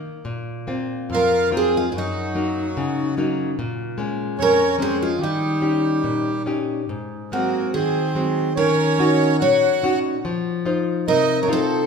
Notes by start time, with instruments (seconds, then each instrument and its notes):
Already playing: nylon-string guitar A#3
0.25 nylon-string guitar A#2
0.67 nylon-string guitar A#3 C4 F4
1.10 nylon-string guitar F2, accordion F4
1.15 twelve-string acoustic guitar A#4
1.51 nylon-string guitar A#3 C4 F4, accordion C4
1.57 twelve-string acoustic guitar G#4
1.73 accordion G#3
1.77 twelve-string acoustic guitar F4
1.86 accordion G#3
1.92 nylon-string guitar F#2, accordion F#3, twelve-string acoustic guitar F4
1.98 twelve-string acoustic guitar D#4
2.35 nylon-string guitar F#3 A#3 D#4
2.77 nylon-string guitar C#3
3.17 nylon-string guitar F#3 A#3 D#4
3.59 nylon-string guitar A#2
3.98 nylon-string guitar G#3 A#3 C#4
4.39 nylon-string guitar F2, accordion C#4, twelve-string acoustic guitar A#4
4.78 nylon-string guitar G#3 A#3 C#4, accordion C4, twelve-string acoustic guitar G#4
5.00 accordion G#3, twelve-string acoustic guitar F4
5.19 nylon-string guitar D#3, accordion G3
5.23 twelve-string acoustic guitar D#4
5.61 nylon-string guitar C#4 D#4 G4
6.04 nylon-string guitar A#2
6.46 nylon-string guitar C#4 D#4 G4
6.89 nylon-string guitar G#2
7.32 nylon-string guitar F#3 G#3 C4, accordion A#3, twelve-string acoustic guitar F#4
7.74 nylon-string guitar D#3, accordion C4, twelve-string acoustic guitar G#4
8.15 nylon-string guitar F#3 G#3 C4
8.56 nylon-string guitar D#3, accordion C#4, twelve-string acoustic guitar A#4
8.99 nylon-string guitar C#4 D#4 F#4
9.40 nylon-string guitar A#2, accordion F#4, twelve-string acoustic guitar C#5
9.83 nylon-string guitar C#4 D#4 F#4
10.25 nylon-string guitar F3
10.65 nylon-string guitar D#4 F4 C5
11.08 nylon-string guitar C3, accordion D#4, twelve-string acoustic guitar A#4
11.42 accordion C#4, twelve-string acoustic guitar A#4
11.49 accordion C4, nylon-string guitar D#4 F4 A4
11.53 twelve-string acoustic guitar A4